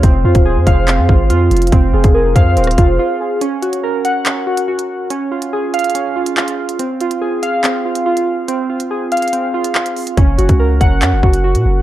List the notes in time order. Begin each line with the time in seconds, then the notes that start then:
0.03 F1 C4 C5, kick, closed hi-hat
0.24 F2 F4
0.35 D#1, kick, closed hi-hat
0.45 G#4
0.56 F2
0.67 F1 F5, kick, closed hi-hat
0.88 C4, clap, closed hi-hat
0.98 F2
1.09 G#1 F4, kick
1.30 F2 F4, closed hi-hat
1.51 F1, closed hi-hat
1.57 closed hi-hat
1.62 closed hi-hat
1.67 closed hi-hat
1.72 F1 C4, kick, closed hi-hat
1.93 F1 F4 G#4
2.04 F1, kick, closed hi-hat
2.14 G#4 A#4
2.36 F2 C5 F5, kick, closed hi-hat
2.57 D#1 C4, closed hi-hat
2.64 cross-stick, closed hi-hat
2.71 closed hi-hat
2.78 F1 F4, kick, closed hi-hat
2.99 F4
3.20 G#4
3.41 C#4, closed hi-hat
3.62 F#4, closed hi-hat
3.73 closed hi-hat
3.83 A#4
4.05 F#5, closed hi-hat
4.26 C#4, clap, closed hi-hat
4.47 F#4
4.57 closed hi-hat
4.68 F#4
4.79 closed hi-hat
5.10 C#4, closed hi-hat
5.31 F4
5.42 closed hi-hat
5.53 G#4
5.74 F5, closed hi-hat
5.79 closed hi-hat
5.84 closed hi-hat
5.90 closed hi-hat
5.95 C#4, closed hi-hat
6.16 F4
6.26 closed hi-hat
6.37 F4, clap
6.48 closed hi-hat
6.69 closed hi-hat
6.79 C4, closed hi-hat
7.01 F4, closed hi-hat
7.11 closed hi-hat
7.21 G#4
7.43 F5, closed hi-hat
7.64 C4, clap, closed hi-hat
7.85 F4
7.95 closed hi-hat
8.06 F4
8.17 closed hi-hat
8.48 C4, closed hi-hat
8.70 F4
8.80 closed hi-hat
8.91 G#4
9.12 F5, closed hi-hat
9.17 closed hi-hat
9.22 closed hi-hat
9.28 closed hi-hat
9.33 C4, closed hi-hat
9.54 F4
9.64 closed hi-hat
9.75 F4, clap
9.86 closed hi-hat
9.97 open hi-hat
10.07 closed hi-hat
10.17 F#1 C#4, kick, closed hi-hat
10.38 F#1 F#4, closed hi-hat
10.49 C#2, kick, closed hi-hat
10.60 A#4
10.81 F#1 F#5, kick, closed hi-hat
11.02 F#2 C#4, clap, closed hi-hat
11.13 F#1
11.23 F#1 F#4, kick
11.33 closed hi-hat
11.44 F#4
11.55 A#2, closed hi-hat
11.65 F#1